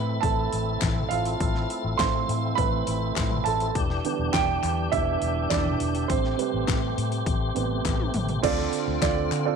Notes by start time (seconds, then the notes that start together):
Already playing: A2 E3 A3 C4 E4 B4 B5
0.21 A1 A4 A5, kick, open hi-hat
0.52 A1, open hi-hat
0.81 A1, kick, snare, clap, open hi-hat
0.96 floor tom
1.09 A1 F4 F5, open hi-hat
1.25 open hi-hat
1.40 A1, kick, open hi-hat
1.55 snare
1.70 open hi-hat
1.84 A1
1.98 A1 E3 A3 C4 C5 C6, kick, snare, clap, open hi-hat
2.29 A2, open hi-hat
2.55 A1 B4 B5, kick, open hi-hat
2.87 A1, open hi-hat
3.16 A1, kick, snare, clap, open hi-hat
3.31 floor tom
3.44 A1 A4 A5, open hi-hat
3.60 open hi-hat
3.75 E1 E3 D4 G4, kick, open hi-hat
3.90 snare
4.04 D3 G3 B3, open hi-hat
4.19 E1
4.33 E1 G4 G5, kick, snare, clap, open hi-hat
4.63 E2, clap, open hi-hat
4.92 E1 D3 G3 B3 E4 E5, kick, open hi-hat
5.22 E1, open hi-hat
5.50 E1 D4 D5, kick, snare, clap, open hi-hat
5.65 floor tom
5.80 E1, open hi-hat
5.95 open hi-hat
6.08 A1 A3 C4 C5, kick, open hi-hat
6.25 snare
6.37 C3 G3 B4, open hi-hat
6.54 A1
6.68 A1, kick, snare, clap, open hi-hat
6.98 A2, open hi-hat
7.12 open hi-hat
7.26 A1, kick, open hi-hat
7.55 A1 C3 G3 B3, open hi-hat
7.85 A1, kick, snare, clap, open hi-hat
8.00 high tom
8.14 A1, mid tom, open hi-hat
8.29 floor tom, open hi-hat
8.42 D2 D3 C4 F4 A4 D5, kick, open hi-hat, crash
8.58 snare
8.73 open hi-hat
8.88 D2
9.01 D2 C4 F4 A4 D5, kick, snare, clap, open hi-hat
9.31 D3, clap, open hi-hat
9.45 C4 F4 A4 D5